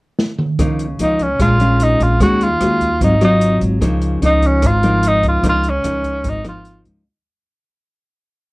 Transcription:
0.19 snare
0.38 mid tom
0.59 upright bass C#2, nylon-string guitar C#3 F3 A#3 D#4, kick, cross-stick, closed hi-hat
0.79 closed hi-hat
0.99 upright bass C#2, nylon-string guitar F3 A#3 D#4, tenor saxophone D#4, closed hi-hat
1.19 tenor saxophone C#4, kick, closed hi-hat
1.39 upright bass A#1, nylon-string guitar A#2 G#3 C#4 F4, tenor saxophone F4, kick, cross-stick, closed hi-hat
1.60 nylon-string guitar G#3 C#4 F4, closed hi-hat
1.80 tenor saxophone D#4, closed hi-hat
2.00 upright bass A#1, tenor saxophone F4, kick, closed hi-hat
2.20 upright bass D#2, nylon-string guitar D#3 G#3 C#4 F#4, tenor saxophone F#4, kick, cross-stick, closed hi-hat
2.41 tenor saxophone F4, closed hi-hat
2.60 upright bass D#2, nylon-string guitar G#3 C#4 F#4, cross-stick, closed hi-hat
2.81 kick, closed hi-hat
3.01 upright bass G#1, nylon-string guitar G#2 F#3 C4 F4, tenor saxophone D#4, kick, closed hi-hat
3.21 nylon-string guitar F#3 C4 F4, tenor saxophone D#4, cross-stick, closed hi-hat
3.41 closed hi-hat
3.61 upright bass G#1, kick, closed hi-hat
3.81 upright bass C#2, nylon-string guitar C#3 F3 A#3 D#4, kick, cross-stick, closed hi-hat
4.01 closed hi-hat
4.22 upright bass C#2, nylon-string guitar F3 A#3 D#4, tenor saxophone D#4, closed hi-hat
4.42 kick, closed hi-hat
4.46 tenor saxophone C#4
4.62 upright bass G#1, nylon-string guitar G#2, kick, cross-stick, closed hi-hat
4.66 tenor saxophone F4
4.83 nylon-string guitar F3 A#3 D#4, closed hi-hat
5.03 closed hi-hat
5.08 tenor saxophone D#4
5.23 upright bass C#2, kick, closed hi-hat
5.28 tenor saxophone F4
5.43 upright bass C#2, nylon-string guitar C#3 F3 A#3 D#4, kick, cross-stick, closed hi-hat
5.49 tenor saxophone F4
5.64 closed hi-hat
5.69 tenor saxophone C#4
5.84 upright bass C#2, nylon-string guitar F3 A#3 D#4, cross-stick, closed hi-hat
6.04 kick, closed hi-hat
6.24 upright bass G#1, nylon-string guitar G#2, kick, closed hi-hat
6.29 tenor saxophone D#4
6.44 nylon-string guitar F3 A#3 D#4, cross-stick, closed hi-hat
6.48 tenor saxophone F4
6.65 closed hi-hat
6.85 upright bass C#2, kick, closed hi-hat

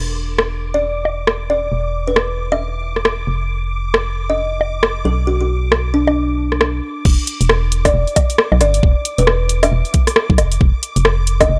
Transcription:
Already playing: fm bass E1, string machine D6
0.39 cross-stick
0.74 kalimba D5
1.05 high bongo
1.27 cross-stick
1.50 kalimba D5
1.72 fm bass E1
2.07 kalimba B4
2.16 cross-stick
2.52 kalimba E5, high bongo
2.96 cross-stick
3.05 cross-stick
3.27 fm bass F1
3.94 cross-stick
4.30 kalimba D#5
4.61 high bongo
4.83 cross-stick
5.05 fm bass B1, kalimba A4
5.27 kalimba F#4
5.41 kalimba F#4
5.72 cross-stick
5.94 kalimba D4
6.07 kalimba D4, high bongo
6.52 cross-stick
6.61 cross-stick
7.05 fm bass E1, string machine D6, kick, crash
7.27 closed hi-hat
7.41 fm bass E1, closed hi-hat
7.49 cross-stick
7.72 closed hi-hat
7.85 kalimba D5, kick, cross-stick, closed hi-hat, high bongo
7.94 fm bass E1
8.07 closed hi-hat
8.16 kick, closed hi-hat, high bongo
8.30 closed hi-hat
8.38 cross-stick
8.52 fm bass B1, high bongo
8.61 fm bass G1, kalimba D5, cross-stick, closed hi-hat
8.74 closed hi-hat
8.83 fm bass E1, kick
9.05 closed hi-hat
9.18 fm bass E1, kalimba B4, closed hi-hat
9.27 cross-stick
9.49 closed hi-hat
9.63 kalimba E5, cross-stick, closed hi-hat, high bongo
9.72 fm bass E1
9.85 closed hi-hat
9.94 kick, closed hi-hat
10.07 cross-stick, closed hi-hat
10.16 cross-stick
10.30 fm bass B1, kick
10.38 fm bass F1, cross-stick, closed hi-hat, high bongo
10.52 closed hi-hat
10.61 fm bass F1, kick
10.83 closed hi-hat
10.96 fm bass F1, closed hi-hat
11.05 cross-stick
11.27 closed hi-hat
11.41 kalimba D#5, kick, cross-stick, closed hi-hat, high bongo
11.49 fm bass F1

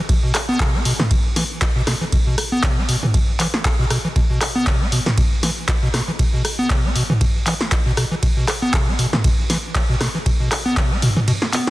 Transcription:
0.09 acid bass B2, kick, ride
0.23 acid bass B2
0.35 cross-stick, clap, open hi-hat
0.49 acid bass B3
0.60 acid bass B2, kick, clap, ride
0.74 acid bass A3
0.85 acid bass B2, open hi-hat
1.00 acid bass E3, snare, mid tom
1.11 acid bass B2, kick, ride
1.36 acid bass E3, snare, open hi-hat
1.62 kick, clap, ride
1.76 acid bass B2
1.87 acid bass B2, cross-stick, snare, open hi-hat
2.01 acid bass E3
2.12 acid bass B2, kick, ride
2.27 acid bass B2
2.38 cross-stick, open hi-hat
2.52 acid bass B3
2.63 acid bass B2, kick, clap, ride
2.77 acid bass A3
2.89 acid bass B2, open hi-hat
3.03 acid bass E3, mid tom
3.14 acid bass B2, kick, ride
3.40 acid bass E3, clap, open hi-hat
3.54 snare
3.65 kick, clap, ride
3.79 acid bass B2
3.90 acid bass B2, cross-stick, open hi-hat
4.05 acid bass E3
4.16 acid bass B2, kick, ride
4.30 acid bass B2
4.41 cross-stick, clap, open hi-hat
4.55 acid bass B3
4.67 acid bass B2, kick, clap, ride
4.81 acid bass A3
4.92 acid bass B2, open hi-hat
5.06 acid bass E3, snare, mid tom
5.18 acid bass B2, kick, ride
5.43 acid bass E3, snare, open hi-hat
5.68 kick, clap, ride
5.83 acid bass B2
5.94 acid bass B2, cross-stick, snare, open hi-hat
6.08 acid bass E3
6.19 acid bass B2, kick, ride
6.33 acid bass B2
6.45 cross-stick, open hi-hat
6.59 acid bass B3
6.70 acid bass B2, kick, clap, ride
6.84 acid bass A3
6.96 acid bass B2, open hi-hat
7.10 acid bass E3, mid tom
7.21 acid bass B2, kick, ride
7.46 acid bass E3, clap, open hi-hat
7.61 snare
7.72 kick, clap, ride
7.86 acid bass B2
7.97 acid bass B2, cross-stick, open hi-hat
8.11 acid bass E3
8.23 acid bass B2, kick, ride
8.37 acid bass B2
8.48 cross-stick, clap, open hi-hat
8.62 acid bass B3
8.73 acid bass B2, kick, clap, ride
8.88 acid bass A3
8.99 acid bass B2, open hi-hat
9.13 acid bass E3, snare, mid tom
9.24 acid bass B2, kick, ride
9.50 acid bass E3, snare, open hi-hat
9.75 kick, clap, ride
9.89 acid bass B2
10.01 acid bass B2, cross-stick, snare, open hi-hat
10.15 acid bass E3
10.26 acid bass B2, kick, ride
10.40 acid bass B2
10.52 cross-stick, clap, open hi-hat
10.66 acid bass B3
10.77 acid bass B2, kick, clap, ride
10.91 acid bass A3
11.02 acid bass B2, mid tom, open hi-hat
11.16 acid bass E3, mid tom
11.28 acid bass B2, ride
11.42 snare
11.53 acid bass B3, clap, open hi-hat

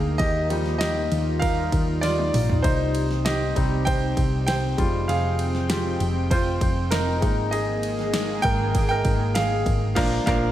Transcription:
Already playing: picked electric bass D2, grand piano G#3 A#3 D#4 G#4 A#4 F5 G5, analog synth pad A#3 D#4 G#4
0.18 picked electric bass D#2, analog synth pad G3 F4, grand piano G4 D#5, kick, ride
0.49 grand piano F3 G3 D#4, ride
0.66 snare
0.78 grand piano G4 D#5, snare, ride
1.12 picked electric bass D#2, ride
1.39 grand piano A#4 F5, kick, ride
1.72 picked electric bass D#2, kick, ride
2.01 grand piano F4 D5, snare, ride
2.19 high tom
2.34 picked electric bass A#1, mid tom, open hi-hat, ride
2.50 floor tom
2.62 picked electric bass C2, analog synth pad C4 G4, grand piano D#4 C5, kick, ride
2.95 ride
3.11 snare
3.25 grand piano G4 D#5, snare, ride
3.55 picked electric bass C2, grand piano G3 C4 D#4, kick, ride
3.85 grand piano C5 G5, kick, ride
4.17 picked electric bass C2, kick, ride
4.47 grand piano C5 G5, snare, ride
4.77 picked electric bass F1, analog synth pad F3 C4 G5, grand piano G3 G#3 F4, kick, ride
5.08 picked electric bass F1, grand piano G#4 F5, ride
5.39 ride
5.55 snare
5.69 grand piano G#3 F4 G4, snare, ride
6.00 picked electric bass F1, ride
6.31 grand piano F4 C5, kick, ride
6.61 picked electric bass F1, kick, ride
6.91 grand piano D#4 A#4, snare, ride
7.21 picked electric bass G#1, analog synth pad D#3 G#3 A#3 G#4, grand piano G#3 A#3 D#4, kick, ride
7.51 grand piano G#4 D#5, ride
7.83 ride
7.99 snare
8.14 snare, ride
8.42 picked electric bass G#1, grand piano A#4 G5, kick, ride
8.75 kick, ride
8.89 grand piano A#4 G5
9.05 picked electric bass G#1, kick, ride
9.35 grand piano G#4 F5, snare, ride
9.66 picked electric bass G#1, kick, ride
9.95 picked electric bass A#1, analog synth pad D3 F3 A#3 F4, grand piano F3 A#3 D4 A#4 F5, kick, snare, crash
10.26 picked electric bass A#1, grand piano F3 A#3 D4 A#4 F5, kick, snare

